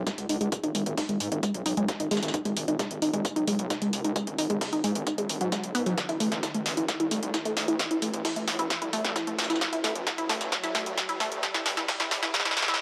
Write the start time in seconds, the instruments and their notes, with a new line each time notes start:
Already playing: riser
0.07 synth arpeggio sound G#3, kick, snare, closed hi-hat, tambourine
0.18 analog synth bass C#2, closed hi-hat
0.29 analog synth bass C#2, synth arpeggio sound D#4, open hi-hat, tambourine
0.41 analog synth bass C#2, synth arpeggio sound G#3, closed hi-hat
0.52 kick, closed hi-hat, mid tom, tambourine
0.64 analog synth bass G#1, synth arpeggio sound D#4, closed hi-hat, mid tom
0.75 analog synth bass G#1, synth arpeggio sound G#3, open hi-hat, tambourine
0.86 analog synth bass G#1, closed hi-hat, mid tom
0.98 synth arpeggio sound D#4, kick, snare, closed hi-hat, open hi-hat
1.09 analog synth bass G#1, synth arpeggio sound G#3, closed hi-hat
1.20 analog synth bass G#2, open hi-hat, tambourine
1.32 analog synth bass G#1, synth arpeggio sound D#4, closed hi-hat, mid tom
1.43 synth arpeggio sound G#3, kick, closed hi-hat, tambourine
1.54 analog synth bass B1, closed hi-hat, mid tom
1.66 analog synth bass B1, synth arpeggio sound D#4, open hi-hat, tambourine
1.77 analog synth bass B1, synth arpeggio sound G#3, closed hi-hat
1.88 kick, snare, closed hi-hat, tambourine
2.00 analog synth bass G#1, synth arpeggio sound D#4, closed hi-hat
2.11 analog synth bass G#1, synth arpeggio sound G#3, snare, open hi-hat, tambourine
2.17 snare, tambourine
2.23 analog synth bass G#1, snare, closed hi-hat, tambourine
2.28 snare, tambourine
2.34 synth arpeggio sound D#4, kick, closed hi-hat, mid tom, tambourine
2.45 analog synth bass G#1, synth arpeggio sound G#3, closed hi-hat, mid tom
2.57 analog synth bass G#1, open hi-hat, tambourine
2.68 analog synth bass G#1, synth arpeggio sound D#4, closed hi-hat, mid tom
2.79 synth arpeggio sound G#3, kick, snare, closed hi-hat, tambourine
2.91 analog synth bass G#1, closed hi-hat
3.02 analog synth bass G#1, synth arpeggio sound D#4, open hi-hat, tambourine
3.13 analog synth bass G#1, synth arpeggio sound G#3, closed hi-hat, mid tom
3.25 kick, closed hi-hat, tambourine
3.36 analog synth bass B1, synth arpeggio sound D#4, closed hi-hat, mid tom
3.48 analog synth bass B1, synth arpeggio sound G#3, open hi-hat, tambourine
3.59 analog synth bass B1, closed hi-hat
3.70 synth arpeggio sound D#4, kick, snare, closed hi-hat, tambourine
3.82 analog synth bass C#2, synth arpeggio sound G#3, closed hi-hat
3.93 analog synth bass C#2, open hi-hat, tambourine
4.04 analog synth bass C#2, synth arpeggio sound D#4, closed hi-hat
4.16 synth arpeggio sound G#3, kick, closed hi-hat, mid tom, tambourine
4.27 analog synth bass G#1, closed hi-hat, mid tom
4.38 analog synth bass G#1, synth arpeggio sound D#4, open hi-hat, tambourine
4.50 analog synth bass G#1, synth arpeggio sound G#3, closed hi-hat, mid tom
4.61 kick, snare, closed hi-hat, open hi-hat
4.73 analog synth bass G#1, synth arpeggio sound D#4, closed hi-hat
4.84 analog synth bass G#2, synth arpeggio sound G#3, open hi-hat, tambourine
4.95 analog synth bass G#1, closed hi-hat, mid tom
5.07 synth arpeggio sound D#4, kick, closed hi-hat, tambourine
5.18 analog synth bass G#1, synth arpeggio sound G#3, closed hi-hat, mid tom
5.29 analog synth bass G#1, open hi-hat, tambourine
5.41 analog synth bass G#2, synth arpeggio sound F#3, closed hi-hat
5.52 synth arpeggio sound G#3, kick, snare, closed hi-hat, tambourine
5.64 analog synth bass B1, closed hi-hat
5.75 analog synth bass G#2, synth arpeggio sound B3, open hi-hat, tambourine
5.86 analog synth bass G#2, synth arpeggio sound F#3, closed hi-hat
5.98 kick, snare, closed hi-hat, mid tom, tambourine
6.09 analog synth bass A1, synth arpeggio sound E4, closed hi-hat, mid tom
6.20 analog synth bass A1, synth arpeggio sound A3, open hi-hat, tambourine
6.32 analog synth bass A1, snare, closed hi-hat, mid tom
6.43 synth arpeggio sound E4, kick, snare, closed hi-hat, tambourine
6.54 analog synth bass A1, synth arpeggio sound A3, closed hi-hat
6.66 analog synth bass A1, snare, open hi-hat, tambourine
6.77 analog synth bass A1, synth arpeggio sound E4, closed hi-hat, mid tom
6.88 kick, snare, closed hi-hat, tambourine
7.00 analog synth bass C2, synth arpeggio sound E4, closed hi-hat, mid tom
7.11 analog synth bass C2, synth arpeggio sound A3, open hi-hat, tambourine
7.23 analog synth bass C2, closed hi-hat
7.34 synth arpeggio sound E4, kick, snare, closed hi-hat, tambourine
7.45 analog synth bass D2, synth arpeggio sound A3, closed hi-hat
7.57 analog synth bass D2, snare, open hi-hat, tambourine
7.68 analog synth bass D2, synth arpeggio sound E4, closed hi-hat
7.79 kick, snare, closed hi-hat, mid tom, tambourine
7.91 analog synth bass A1, synth arpeggio sound E4, closed hi-hat, mid tom
8.02 analog synth bass A1, synth arpeggio sound A3, open hi-hat, tambourine
8.14 analog synth bass A1, closed hi-hat, mid tom
8.25 synth arpeggio sound E4, kick, snare, closed hi-hat, open hi-hat
8.36 analog synth bass A1, synth arpeggio sound A3, closed hi-hat
8.48 analog synth bass A2, snare, open hi-hat, tambourine
8.59 analog synth bass A1, synth arpeggio sound E4, closed hi-hat, mid tom
8.70 kick, snare, closed hi-hat, tambourine
8.82 analog synth bass C2, synth arpeggio sound E4, closed hi-hat, mid tom
8.93 analog synth bass C2, synth arpeggio sound A3, open hi-hat, tambourine
9.04 analog synth bass C2, snare, closed hi-hat
9.16 synth arpeggio sound E4, kick, snare, closed hi-hat, tambourine
9.27 analog synth bass A1, synth arpeggio sound A3, closed hi-hat
9.38 analog synth bass A1, snare, open hi-hat, tambourine
9.44 snare, tambourine
9.50 analog synth bass A1, synth arpeggio sound E4, snare, closed hi-hat, tambourine
9.56 snare, tambourine
9.61 kick, snare, closed hi-hat, mid tom, tambourine
9.73 analog synth bass A1, synth arpeggio sound E4, closed hi-hat, mid tom
9.84 analog synth bass A1, synth arpeggio sound A3, snare, open hi-hat, tambourine
9.95 analog synth bass A1, closed hi-hat, mid tom
10.07 kick, snare, closed hi-hat, tambourine
10.18 analog synth bass A1, synth arpeggio sound E4, closed hi-hat
10.29 analog synth bass A1, synth arpeggio sound A3, snare, open hi-hat, tambourine
10.41 analog synth bass A1, snare, closed hi-hat, mid tom, tambourine
10.52 kick, snare, closed hi-hat, tambourine
10.64 analog synth bass C2, synth arpeggio sound E4, snare, closed hi-hat, mid tom, tambourine
10.75 analog synth bass C2, synth arpeggio sound A3, snare, open hi-hat, tambourine
10.86 analog synth bass C2, closed hi-hat
10.98 kick, snare, closed hi-hat, tambourine
11.09 analog synth bass D2, synth arpeggio sound E4, closed hi-hat
11.20 analog synth bass D2, synth arpeggio sound A3, snare, open hi-hat, tambourine
11.32 analog synth bass D2, closed hi-hat
11.43 kick, snare, closed hi-hat, mid tom, tambourine
11.54 analog synth bass A1, synth arpeggio sound E4, snare, closed hi-hat, mid tom
11.66 analog synth bass A1, snare, open hi-hat, tambourine
11.77 analog synth bass A1, synth arpeggio sound E4, snare, closed hi-hat, mid tom
11.88 kick, snare, closed hi-hat, open hi-hat
12.00 analog synth bass A1, synth arpeggio sound E4, snare, closed hi-hat
12.11 analog synth bass A2, snare, open hi-hat, tambourine
12.23 analog synth bass A1, synth arpeggio sound E4, snare, closed hi-hat, mid tom
12.34 kick, snare, closed hi-hat, tambourine, reverse cymbal
12.40 snare
12.45 analog synth bass A1, synth arpeggio sound E4, snare, closed hi-hat, mid tom
12.51 snare
12.57 analog synth bass A1, snare, open hi-hat, tambourine
12.62 snare
12.68 analog synth bass A2, synth arpeggio sound E4, snare, closed hi-hat
12.74 snare